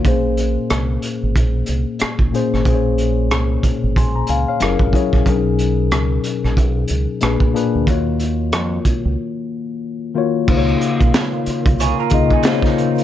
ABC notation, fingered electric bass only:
X:1
M:4/4
L:1/16
Q:"Swing 16ths" 1/4=92
K:Ebm
V:1 name="Fingered electric bass" clef=bass
B,,,4 =C,,2 z A,,, B,,,2 C,, z2 A,,, z A,,, | B,,,4 =C,,2 z A,,, z2 D,, z G,,, A,,, z B,,, | =B,,,4 ^C,,2 z ^A,,, B,,,2 C,, z _B,,, z2 =D,, | E,,4 F,,2 z D,, z8 |
[K:Db] D,,2 z B,,, z3 C,,2 z D,, D,2 z3 |]